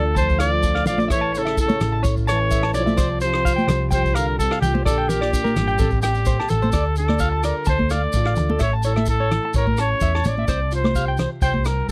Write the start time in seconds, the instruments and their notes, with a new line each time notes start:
Already playing: fingered electric bass D2, trombone D3, steel-string acoustic guitar D3 A3 D4 F4, trumpet A4
0.15 trombone F3, trumpet C5, clean electric guitar A5, kick, maracas
0.29 kick, maracas
0.39 trombone F3, steel-string acoustic guitar D4, trumpet D5, clean electric guitar F5, cross-stick, closed hi-hat, maracas
0.63 steel-string acoustic guitar A2 F4, kick, maracas
0.75 clean electric guitar F5, cross-stick
0.86 fingered electric bass A#1, trombone F3, steel-string acoustic guitar D4, trumpet D5, clean electric guitar F5, closed hi-hat, low conga, maracas
0.98 clean electric guitar D5, high conga, maracas
1.08 fingered electric bass A1, steel-string acoustic guitar A2, trumpet C#5, clean electric guitar E5, kick, cross-stick, maracas
1.13 trombone E3, steel-string acoustic guitar A4
1.21 clean electric guitar A5
1.32 clean electric guitar C#5, closed hi-hat, maracas
1.37 trombone C#3, steel-string acoustic guitar E4, trumpet A4
1.45 clean electric guitar E5, cross-stick, maracas
1.57 steel-string acoustic guitar E4, trumpet A4, kick, maracas
1.62 trombone C#3
1.68 clean electric guitar C#5, high conga, maracas
1.80 fingered electric bass A1, steel-string acoustic guitar C#4 E4, cross-stick, closed hi-hat, low conga, maracas
1.92 clean electric guitar A5
2.03 clean electric guitar C#5, kick, maracas
2.08 steel-string acoustic guitar A4
2.17 kick, maracas
2.27 trombone E3, trumpet C#5, clean electric guitar A5, cross-stick, closed hi-hat, maracas
2.51 steel-string acoustic guitar A2 A4, clean electric guitar E5, kick, maracas
2.63 clean electric guitar A5, cross-stick
2.74 fingered electric bass B1, trombone F3, steel-string acoustic guitar E4, clean electric guitar C#5, trumpet D5, closed hi-hat, maracas
2.86 clean electric guitar E5, high conga, maracas
2.97 fingered electric bass C2, steel-string acoustic guitar C3 C5, clean electric guitar C5, kick, cross-stick, maracas
3.21 trombone F3, steel-string acoustic guitar G4, trumpet C5, closed hi-hat, maracas
3.33 clean electric guitar C5, cross-stick, maracas
3.45 steel-string acoustic guitar F4, clean electric guitar F5, kick, maracas
3.56 clean electric guitar G5, high conga, maracas
3.67 fingered electric bass C2, steel-string acoustic guitar G3 G4, clean electric guitar C5, cross-stick, closed hi-hat, low conga, maracas
3.91 trombone F3, steel-string acoustic guitar G4, trumpet C5, clean electric guitar G5, kick, maracas
4.04 kick, maracas
4.15 trombone D3, steel-string acoustic guitar F4, trumpet A#4, clean electric guitar F5, cross-stick, closed hi-hat, maracas
4.39 trombone C3, steel-string acoustic guitar G3 G4, trumpet A4, kick, maracas
4.51 clean electric guitar F5, cross-stick
4.60 fingered electric bass C2, trombone A#2, trumpet G4, clean electric guitar G5, closed hi-hat, low conga, maracas
4.65 steel-string acoustic guitar F4
4.74 clean electric guitar C5, high conga
4.85 fingered electric bass A#1, steel-string acoustic guitar A#2 G4, trombone D3, trumpet A4, clean electric guitar D5, kick, cross-stick, maracas
4.98 clean electric guitar G5
5.08 trombone A#2, steel-string acoustic guitar D4, trumpet G4, clean electric guitar A#4, closed hi-hat, low conga, maracas
5.21 clean electric guitar D5, cross-stick, maracas
5.33 steel-string acoustic guitar D4, kick, maracas
5.44 clean electric guitar A#4, high conga, maracas
5.56 fingered electric bass G#1, steel-string acoustic guitar G3 D4, cross-stick, closed hi-hat, low conga, maracas
5.68 clean electric guitar G5, maracas
5.78 fingered electric bass A1, steel-string acoustic guitar A2 C4, clean electric guitar A4, kick, low conga, maracas
5.90 kick, maracas
6.01 steel-string acoustic guitar C4, trumpet G4, clean electric guitar G5, cross-stick, closed hi-hat, maracas
6.15 maracas
6.25 steel-string acoustic guitar A#2, clean electric guitar C5, kick, maracas
6.40 clean electric guitar A5, cross-stick
6.49 fingered electric bass A1, steel-string acoustic guitar C3, trumpet A4, clean electric guitar A4, closed hi-hat, low conga, maracas
6.62 clean electric guitar C5, high conga, maracas
6.72 fingered electric bass D2, clean electric guitar D5, kick, cross-stick, maracas
6.76 steel-string acoustic guitar D3
6.96 steel-string acoustic guitar D4, trumpet A4, closed hi-hat, maracas
7.08 clean electric guitar D5, cross-stick, high conga
7.19 steel-string acoustic guitar F4, clean electric guitar F5, kick, maracas
7.32 clean electric guitar A5
7.43 steel-string acoustic guitar A4, trumpet A#4, clean electric guitar D5, cross-stick, closed hi-hat, maracas
7.65 fingered electric bass D2, trumpet C5, clean electric guitar A5, kick, maracas
7.70 steel-string acoustic guitar D4
7.79 kick, high conga
7.90 steel-string acoustic guitar A3, trumpet D5, clean electric guitar F5, cross-stick, closed hi-hat, maracas
8.13 fingered electric bass A1, steel-string acoustic guitar F4, kick, maracas
8.25 clean electric guitar F5, cross-stick
8.36 fingered electric bass D2, steel-string acoustic guitar D4, muted clean electric guitar stroke, closed hi-hat, low conga, maracas
8.50 clean electric guitar A4, high conga
8.59 fingered electric bass A1, steel-string acoustic guitar A2, trumpet C#5, clean electric guitar E5, kick, cross-stick, maracas
8.73 clean electric guitar A5
8.83 steel-string acoustic guitar E4, trumpet A4, clean electric guitar C#5, closed hi-hat, maracas
8.96 clean electric guitar E5, cross-stick, high conga
9.06 steel-string acoustic guitar E4, trumpet A4, kick, maracas
9.20 clean electric guitar C#5
9.31 steel-string acoustic guitar E4, cross-stick, closed hi-hat, low conga
9.45 clean electric guitar A5
9.54 fingered electric bass A1, steel-string acoustic guitar E4, trumpet A#4, clean electric guitar C#5, kick, maracas
9.67 kick, high conga
9.77 steel-string acoustic guitar C#4, trumpet C#5, clean electric guitar A5, cross-stick, closed hi-hat, maracas
10.00 fingered electric bass E2, steel-string acoustic guitar A2, clean electric guitar E5, kick, maracas
10.15 clean electric guitar A5, cross-stick
10.24 fingered electric bass A1, steel-string acoustic guitar A#2, clean electric guitar C#5, closed hi-hat, high conga, low conga, maracas
10.28 trumpet D5
10.38 clean electric guitar E5, high conga
10.48 fingered electric bass C2, steel-string acoustic guitar C3, clean electric guitar C5, kick, cross-stick, maracas
10.71 steel-string acoustic guitar F4, trumpet C5, closed hi-hat, maracas
10.84 clean electric guitar C5, cross-stick, high conga
10.95 steel-string acoustic guitar G4, clean electric guitar F5, kick, maracas
11.08 clean electric guitar G5
11.17 steel-string acoustic guitar C5, clean electric guitar C5, cross-stick, closed hi-hat, low conga, maracas
11.42 fingered electric bass C2, steel-string acoustic guitar F4, trumpet C5, clean electric guitar G5, kick, maracas
11.54 kick, high conga
11.65 steel-string acoustic guitar G3, trumpet A#4, cross-stick, closed hi-hat, maracas